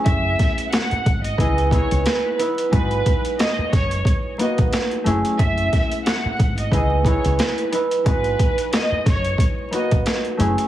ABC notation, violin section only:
X:1
M:4/4
L:1/16
Q:"Swing 16ths" 1/4=90
K:G#phr
V:1 name="Violin section"
e4 f3 d3 c2 B2 z2 | B4 d2 c2 z2 d z4 z | e4 f3 d3 c2 B2 z2 | B4 d2 c2 z2 d z4 z |]